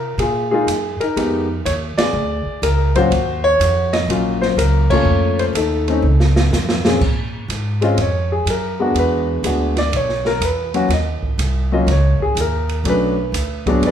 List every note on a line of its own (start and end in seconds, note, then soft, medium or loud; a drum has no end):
0.00 0.17 C3 medium
0.00 0.16 F4 medium
0.00 0.21 A#4 medium
0.18 0.66 A#2 medium
0.18 0.52 F4 medium
0.18 0.50 G#4 medium
0.18 ride medium
0.51 0.66 G#3 medium
0.51 0.67 A#3 medium
0.51 0.67 D#4 medium
0.51 0.67 F4 medium
0.51 1.02 G#4 medium
0.67 0.97 F#2 medium
0.67 hi-hat pedal medium
0.67 ride medium
1.00 1.16 D#4 medium
1.00 1.46 A#4 medium
1.00 muted upright bass stroke soft
1.00 ride soft
1.16 1.64 F2 medium
1.16 1.46 G#3 medium
1.16 1.46 B3 medium
1.16 1.46 D#4 medium
1.16 1.47 G4 medium
1.16 ride medium
1.65 1.96 D#2 medium
1.65 1.73 C#5 medium
1.65 hi-hat pedal medium
1.65 ride medium
1.97 2.92 G#4 medium
1.97 2.65 D5 loud
1.97 muted upright bass stroke soft
1.97 snare medium
1.97 ride medium
2.13 2.44 D2 medium
2.46 muted upright bass stroke soft
2.62 3.10 C#2 medium
2.62 2.93 A#4 medium
2.62 hi-hat pedal medium
2.62 ride medium
2.96 3.10 F#3 medium
2.96 3.10 A#3 medium
2.96 3.11 C#4 medium
2.96 3.11 F4 medium
2.96 3.90 F#4 medium
2.96 3.46 C5 loud
2.96 kick medium
2.96 ride soft
3.11 3.58 D#2 medium
3.11 ride medium
3.44 3.94 C#5 loud
3.60 4.07 F2 medium
3.60 hi-hat pedal medium
3.60 ride medium
3.93 4.43 D#5 loud
3.93 snare medium
3.93 ride soft
4.08 4.55 A#1 medium
4.08 4.84 F#3 medium
4.08 4.84 A#3 medium
4.08 4.84 C#4 medium
4.08 4.85 F4 medium
4.08 ride medium
4.41 4.58 C5 medium
4.41 snare soft
4.57 5.04 C#2 medium
4.57 4.88 A#4 medium
4.57 hi-hat pedal medium
4.57 ride medium
4.90 5.52 A3 medium
4.90 5.52 A#3 medium
4.90 5.52 C#4 medium
4.90 5.53 F4 medium
4.90 5.53 A4 medium
4.90 5.40 C#5 loud
4.90 kick medium
4.90 crash medium
5.05 5.53 F2 medium
5.39 5.44 C5 medium
5.39 ride soft
5.53 6.01 D#2 medium
5.53 5.88 D#4 medium
5.53 6.81 A4 medium
5.53 hi-hat pedal medium
5.53 ride medium
5.88 6.02 A3 medium
5.88 6.02 C4 medium
5.88 6.03 C#4 medium
5.88 6.03 D#4 medium
5.88 ride soft
6.02 6.50 C#2 medium
6.20 snare medium
6.36 snare medium
6.50 6.99 F2 medium
6.50 snare medium
6.50 hi-hat pedal medium
6.69 snare medium
6.85 6.99 A#2 medium
6.85 7.00 G#3 medium
6.85 7.00 C4 medium
6.85 7.00 C#4 medium
6.85 7.00 G#4 medium
6.85 snare medium
7.01 7.48 A#2 medium
7.01 kick medium
7.01 crash medium
7.48 7.96 G#2 medium
7.48 hi-hat pedal soft
7.48 ride medium
7.81 7.96 G#3 medium
7.81 7.97 C4 medium
7.81 7.97 C#4 medium
7.81 7.97 F4 medium
7.81 7.99 D#5 medium
7.81 ride soft
7.97 8.45 F2 medium
7.97 ride medium
8.01 8.31 C#5 medium
8.32 8.47 G#4 medium
8.45 8.93 F#2 medium
8.45 hi-hat pedal medium
8.45 ride medium
8.50 8.94 A#4 medium
8.80 9.41 G#3 medium
8.80 9.41 B3 medium
8.80 9.42 D4 medium
8.80 9.42 F#4 medium
8.94 9.42 E2 medium
8.94 ride medium
8.99 9.74 B4 medium
9.43 9.91 D2 medium
9.43 9.73 G#3 medium
9.43 9.74 B3 soft
9.43 9.74 D4 medium
9.43 9.75 F#4 medium
9.43 hi-hat pedal medium
9.43 ride medium
9.76 9.93 D5 medium
9.76 snare soft
9.76 ride soft
9.92 10.40 B1 medium
9.92 ride medium
9.96 10.26 C#5 medium
10.09 snare soft
10.25 10.42 A#4 medium
10.25 snare soft
10.40 10.88 E2 medium
10.40 hi-hat pedal medium
10.40 ride medium
10.45 10.89 B4 medium
10.74 10.89 F#3 medium
10.74 10.89 A#3 medium
10.74 10.89 C#4 medium
10.74 10.90 F#4 medium
10.74 ride soft
10.88 11.19 D#2 medium
10.88 snare soft
10.88 ride medium
10.93 11.69 D#5 medium
11.22 muted upright bass stroke soft
11.22 kick medium
11.38 11.86 C2 medium
11.38 hi-hat pedal medium
11.38 ride medium
11.72 11.86 F#3 medium
11.72 11.87 A#3 medium
11.72 11.87 C#4 medium
11.72 11.87 F4 medium
11.72 11.88 D#5 medium
11.87 12.17 C#2 medium
11.87 snare soft
11.87 ride medium
11.92 12.21 C#5 medium
12.20 12.37 G#4 medium
12.20 muted upright bass stroke soft
12.20 kick medium
12.35 12.83 D#2 medium
12.35 hi-hat pedal medium
12.35 ride medium
12.41 12.84 A#4 medium
12.69 ride soft
12.84 13.32 B1 medium
12.84 13.14 F#3 medium
12.84 13.15 A3 medium
12.84 13.15 C#4 medium
12.84 13.15 D4 medium
12.84 ride medium
12.89 13.64 B4 medium
13.32 13.80 D2 medium
13.32 hi-hat pedal medium
13.32 ride medium
13.66 13.91 F#3 medium
13.66 13.91 G#3 medium
13.66 13.91 B3 medium
13.66 13.85 D4 medium
13.66 kick medium
13.66 ride soft
13.81 13.91 E2 medium
13.81 ride medium
13.86 13.91 D4 medium
13.86 13.91 G#4 medium
13.86 13.91 B4 medium
13.86 13.91 D5 medium